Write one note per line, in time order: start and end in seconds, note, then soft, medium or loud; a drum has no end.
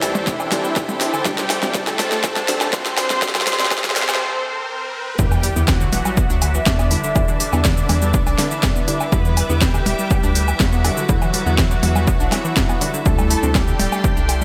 0.00 0.33 D2 loud
0.00 4.20 E2 medium
0.00 0.49 C3 medium
0.00 1.16 E3 medium
0.00 0.49 G3 medium
0.00 0.10 G3 medium
0.00 0.49 D4 medium
0.00 4.20 D4 medium
0.00 4.21 D4 medium
0.00 1.16 E4 loud
0.00 4.17 G4 medium
0.00 4.21 A4 medium
0.00 4.20 C5 medium
0.00 1.21 D5 medium
0.00 1.16 E5 loud
0.00 4.21 G5 medium
0.00 4.17 C6 medium
0.00 snare medium
0.00 open hi-hat medium
0.00 riser medium
0.00 low woodblock medium
0.00 shaker medium
0.15 0.26 A3 medium
0.15 percussion blips loud
0.15 shaker soft
0.27 0.38 C4 medium
0.27 kick loud
0.27 snare medium
0.27 shaker medium
0.40 0.48 A1 medium
0.40 0.47 D4 loud
0.40 low woodblock medium
0.40 shaker soft
0.52 1.23 C3 medium
0.52 0.59 D3 medium
0.52 1.23 G3 medium
0.52 1.23 D4 medium
0.52 snare medium
0.52 open hi-hat loud
0.52 percussion blips loud
0.52 shaker medium
0.64 0.71 G3 medium
0.64 shaker soft
0.76 0.85 E2 medium
0.76 0.84 A3 medium
0.76 kick loud
0.76 snare medium
0.76 low woodblock medium
0.76 shaker medium
0.89 0.96 C4 medium
0.89 percussion blips loud
0.89 shaker soft
1.01 1.08 D4 medium
1.01 snare medium
1.01 open hi-hat medium
1.01 shaker medium
1.13 1.24 D3 medium
1.13 low woodblock medium
1.13 shaker soft
1.25 1.56 D2 loud
1.25 1.60 C3 medium
1.25 1.37 D3 medium
1.25 1.60 G3 medium
1.25 1.71 G3 medium
1.25 1.60 D4 loud
1.25 1.71 G4 loud
1.25 4.18 C5 medium
1.25 1.71 G5 loud
1.25 kick loud
1.25 snare medium
1.25 percussion blips medium
1.25 shaker medium
1.38 1.45 G3 medium
1.38 snare medium
1.38 shaker soft
1.50 1.58 A3 medium
1.50 snare medium
1.50 open hi-hat loud
1.50 low woodblock medium
1.50 shaker medium
1.63 1.93 D2 loud
1.63 2.45 C3 medium
1.63 2.45 G3 medium
1.63 1.70 C4 medium
1.63 2.45 D4 medium
1.63 snare medium
1.63 percussion blips loud
1.63 shaker soft
1.74 1.82 G3 loud
1.74 2.63 A3 medium
1.74 2.63 A4 loud
1.74 2.63 A5 loud
1.74 kick loud
1.74 snare loud
1.74 shaker medium
1.87 1.94 D3 medium
1.87 snare medium
1.87 low woodblock medium
1.87 shaker soft
1.99 2.07 D1 medium
1.99 2.07 G3 medium
1.99 snare loud
1.99 open hi-hat medium
1.99 percussion blips loud
1.99 shaker medium
2.12 2.22 A3 medium
2.12 snare medium
2.12 shaker soft
2.24 2.35 C4 medium
2.24 kick loud
2.24 snare loud
2.24 low woodblock medium
2.24 shaker medium
2.36 2.66 C2 medium
2.36 2.44 D4 loud
2.36 snare medium
2.36 percussion blips loud
2.36 shaker soft
2.48 3.19 C3 medium
2.48 2.56 D3 medium
2.48 3.19 G3 medium
2.48 3.19 D4 medium
2.48 snare loud
2.48 open hi-hat loud
2.48 shaker medium
2.61 2.68 G3 medium
2.61 snare medium
2.61 low woodblock medium
2.61 shaker soft
2.73 3.03 D2 medium
2.73 2.81 A3 medium
2.73 5.09 C4 medium
2.73 5.09 C5 loud
2.73 4.20 C6 loud
2.73 kick loud
2.73 snare loud
2.73 percussion blips loud
2.73 shaker medium
2.86 2.93 C4 medium
2.86 snare medium
2.86 shaker soft
2.98 3.05 D4 medium
2.98 snare loud
2.98 open hi-hat medium
2.98 low woodblock medium
2.98 shaker medium
3.10 3.21 D3 medium
3.10 snare medium
3.10 percussion blips loud
3.10 shaker soft
3.22 3.30 D2 medium
3.22 3.56 C3 loud
3.22 3.56 G3 medium
3.22 3.56 D4 loud
3.22 kick loud
3.22 snare loud
3.22 shaker medium
3.29 snare medium
3.35 3.42 G3 medium
3.35 snare loud
3.35 low woodblock medium
3.35 shaker soft
3.41 snare loud
3.47 3.54 A3 medium
3.47 snare loud
3.47 open hi-hat loud
3.47 percussion blips loud
3.47 shaker medium
3.53 snare loud
3.59 3.89 D2 medium
3.59 4.20 C3 medium
3.59 4.20 G3 medium
3.59 3.67 C4 medium
3.59 4.20 D4 medium
3.59 snare medium
3.59 shaker soft
3.65 snare medium
3.71 3.79 G3 loud
3.71 kick loud
3.71 snare loud
3.71 low woodblock medium
3.71 shaker medium
3.78 snare medium
3.84 3.91 D3 medium
3.84 snare loud
3.84 percussion blips loud
3.84 shaker soft
3.90 snare medium
3.96 4.20 D2 loud
3.96 4.04 G3 medium
3.96 snare loud
3.96 open hi-hat medium
3.96 shaker medium
4.02 snare medium
4.09 4.19 A3 medium
4.09 snare loud
4.09 low woodblock medium
4.09 shaker soft
4.15 snare loud
5.19 5.49 E2 loud
5.19 5.53 D3 medium
5.19 5.30 D3 medium
5.19 5.64 G3 medium
5.19 5.53 G3 medium
5.19 5.53 E4 loud
5.19 14.44 E4 medium
5.19 5.64 G4 loud
5.19 9.08 E5 medium
5.19 5.64 G5 loud
5.19 13.02 D6 medium
5.19 kick loud
5.19 sub drop medium
5.19 shaker medium
5.32 5.39 E3 medium
5.32 low woodblock medium
5.32 shaker soft
5.43 5.51 G3 medium
5.43 13.06 B4 medium
5.43 open hi-hat loud
5.43 shaker medium
5.56 5.86 E2 loud
5.56 6.39 D3 medium
5.56 6.39 E3 medium
5.56 5.63 B3 medium
5.56 6.39 E4 medium
5.56 shaker soft
5.68 5.76 E3 loud
5.68 6.57 F#3 medium
5.68 6.57 F#4 loud
5.68 6.57 F#5 loud
5.68 kick loud
5.68 snare loud
5.68 low woodblock soft
5.68 shaker medium
5.81 5.88 D3 medium
5.81 shaker soft
5.93 6.01 E1 medium
5.93 6.00 E3 medium
5.93 open hi-hat medium
5.93 percussion blips medium
5.93 shaker medium
6.01 14.44 E5 medium
6.05 6.16 G3 medium
6.05 low woodblock medium
6.05 shaker soft
6.17 6.29 B3 medium
6.17 kick loud
6.17 shaker medium
6.30 6.60 D2 medium
6.30 6.37 D4 loud
6.30 shaker soft
6.42 6.49 D3 medium
6.42 open hi-hat loud
6.42 low woodblock medium
6.42 shaker medium
6.55 6.62 E3 medium
6.55 shaker soft
6.66 6.97 E2 medium
6.66 9.03 D3 medium
6.66 6.74 G3 medium
6.66 9.03 D4 loud
6.66 9.03 D5 loud
6.66 kick loud
6.66 snare loud
6.66 percussion blips medium
6.66 shaker medium
6.79 6.86 B3 medium
6.79 low woodblock medium
6.79 shaker soft
6.91 7.13 D3 medium
6.91 7.13 G3 medium
6.91 6.99 D4 medium
6.91 7.13 E4 medium
6.91 open hi-hat medium
6.91 shaker medium
7.04 7.14 D3 medium
7.04 shaker soft
7.16 7.24 E2 medium
7.16 7.50 D3 medium
7.16 7.27 D3 medium
7.16 7.50 G3 medium
7.16 7.50 E4 loud
7.16 kick loud
7.16 low woodblock medium
7.16 shaker medium
7.28 7.35 E3 medium
7.28 shaker soft
7.40 7.48 G3 medium
7.40 open hi-hat loud
7.40 shaker medium
7.53 7.83 E2 medium
7.53 8.36 D3 medium
7.53 8.36 G3 medium
7.53 7.60 B3 medium
7.53 8.36 E4 medium
7.53 low woodblock medium
7.53 shaker soft
7.65 7.72 E3 loud
7.65 kick loud
7.65 snare loud
7.65 shaker medium
7.77 7.85 D3 medium
7.77 shaker soft
7.89 8.20 E2 loud
7.89 7.97 E3 medium
7.89 open hi-hat loud
7.89 percussion blips medium
7.89 low woodblock medium
7.89 shaker medium
8.02 8.13 G3 medium
8.02 shaker soft
8.14 8.25 B3 medium
8.14 kick loud
8.14 shaker medium
8.27 8.34 B1 medium
8.27 8.34 D4 loud
8.27 low woodblock medium
8.27 shaker soft
8.39 8.46 D3 medium
8.39 snare medium
8.39 open hi-hat loud
8.39 percussion blips medium
8.39 shaker medium
8.51 8.58 E3 medium
8.51 shaker soft
8.63 8.72 F#2 medium
8.63 8.71 G3 medium
8.63 kick loud
8.63 snare loud
8.63 low woodblock soft
8.63 shaker medium
8.76 8.83 B3 medium
8.76 shaker soft
8.88 9.09 D3 medium
8.88 9.09 G3 medium
8.88 8.95 D4 medium
8.88 9.09 E4 medium
8.88 open hi-hat loud
8.88 shaker medium
9.01 9.11 D3 medium
9.01 low woodblock medium
9.01 shaker soft
9.12 9.43 E2 loud
9.12 9.47 D3 medium
9.12 9.24 D3 medium
9.12 9.47 G3 medium
9.12 9.58 B3 medium
9.12 9.47 E4 loud
9.12 9.58 B4 loud
9.12 13.02 E5 medium
9.12 9.58 B5 loud
9.12 kick loud
9.12 shaker medium
9.25 9.32 E3 medium
9.25 shaker soft
9.37 9.45 G3 medium
9.37 open hi-hat loud
9.37 low woodblock medium
9.37 shaker medium
9.50 9.80 E2 loud
9.50 10.32 D3 medium
9.50 10.32 G3 medium
9.50 9.57 B3 medium
9.50 10.32 E4 medium
9.50 shaker soft
9.61 9.69 E3 loud
9.61 10.50 G3 medium
9.61 10.50 G4 loud
9.61 10.50 G5 loud
9.61 kick loud
9.61 snare loud
9.61 shaker medium
9.74 9.81 D3 medium
9.74 low woodblock medium
9.74 shaker soft
9.86 9.95 E1 medium
9.86 9.94 E3 medium
9.86 open hi-hat loud
9.86 percussion blips medium
9.86 shaker medium
9.99 10.09 G3 medium
9.99 shaker soft
10.11 10.22 B3 medium
10.11 kick loud
10.11 low woodblock medium
10.11 shaker medium
10.23 10.53 D2 medium
10.23 10.30 D4 loud
10.23 shaker soft
10.35 10.43 D3 medium
10.35 open hi-hat loud
10.35 shaker medium
10.48 10.55 E3 medium
10.48 low woodblock medium
10.48 shaker soft
10.60 10.90 E2 medium
10.60 12.96 F#3 medium
10.60 10.67 G3 medium
10.60 12.96 F#4 loud
10.60 12.96 F#5 loud
10.60 kick loud
10.60 snare loud
10.60 percussion blips medium
10.60 shaker medium
10.73 10.80 B3 medium
10.73 shaker soft
10.84 11.06 D3 medium
10.84 11.06 G3 medium
10.84 10.92 D4 medium
10.84 11.06 E4 medium
10.84 open hi-hat loud
10.84 low woodblock medium
10.84 shaker medium
10.97 11.08 D3 medium
10.97 shaker soft
11.09 11.17 E2 medium
11.09 11.20 D3 medium
11.09 11.43 D3 medium
11.09 11.43 E3 medium
11.09 11.43 E4 loud
11.09 kick loud
11.09 shaker medium
11.22 11.29 E3 medium
11.22 low woodblock medium
11.22 shaker soft
11.34 11.41 G3 medium
11.34 open hi-hat loud
11.34 shaker medium
11.46 11.76 E2 medium
11.46 12.29 D3 medium
11.46 12.29 E3 medium
11.46 11.53 B3 medium
11.46 12.29 E4 medium
11.46 shaker soft
11.58 11.66 E3 loud
11.58 kick loud
11.58 snare loud
11.58 low woodblock medium
11.58 shaker medium
11.71 11.78 D3 medium
11.71 shaker soft
11.83 12.13 E2 loud
11.83 11.90 E3 medium
11.83 open hi-hat loud
11.83 percussion blips medium
11.83 shaker medium
11.95 12.06 G3 medium
11.95 low woodblock medium
11.95 shaker soft
12.07 12.19 B3 medium
12.07 kick loud
12.07 shaker medium
12.20 12.28 B1 medium
12.20 12.27 D4 loud
12.20 shaker soft
12.32 12.40 D3 medium
12.32 snare medium
12.32 open hi-hat loud
12.32 percussion blips medium
12.32 low woodblock medium
12.32 shaker medium
12.45 12.52 E3 medium
12.45 shaker soft
12.56 12.65 F#2 medium
12.56 12.64 G3 medium
12.56 kick loud
12.56 snare loud
12.56 shaker medium
12.69 12.76 B3 medium
12.69 low woodblock medium
12.69 shaker soft
12.81 13.03 D3 medium
12.81 13.03 G3 medium
12.81 12.89 D4 medium
12.81 13.03 E4 medium
12.81 open hi-hat medium
12.81 shaker medium
12.94 13.04 D3 medium
12.94 shaker soft
13.05 13.36 D2 loud
13.05 13.40 C3 medium
13.05 13.17 D3 medium
13.05 13.40 G3 medium
13.05 13.51 A3 medium
13.05 13.40 D4 loud
13.05 14.44 D4 medium
13.05 13.51 A4 loud
13.05 14.44 D5 medium
13.05 13.51 A5 medium
13.05 14.44 C6 loud
13.05 kick loud
13.05 shaker medium
13.18 13.25 G3 medium
13.18 low woodblock medium
13.18 shaker soft
13.30 13.38 A3 medium
13.30 open hi-hat loud
13.30 shaker medium
13.43 13.73 D2 loud
13.43 14.26 C3 medium
13.43 14.26 G3 medium
13.43 13.50 C4 medium
13.43 14.26 D4 medium
13.43 shaker soft
13.55 13.62 G3 loud
13.55 14.44 G3 medium
13.55 14.44 G4 loud
13.55 14.44 G5 loud
13.55 kick loud
13.55 snare loud
13.55 low woodblock medium
13.55 shaker medium
13.60 14.44 A4 medium
13.68 13.75 D3 medium
13.68 shaker soft
13.79 13.88 D1 medium
13.79 13.87 G3 medium
13.79 open hi-hat medium
13.79 percussion blips loud
13.79 shaker medium
13.92 14.03 A3 medium
13.92 low woodblock medium
13.92 shaker soft
14.04 14.15 C4 medium
14.04 kick loud
14.04 shaker medium
14.17 14.44 C2 medium
14.17 14.24 D4 loud
14.17 shaker soft
14.29 14.36 D3 medium
14.29 open hi-hat loud
14.29 low woodblock medium
14.29 shaker medium
14.38 14.44 C5 medium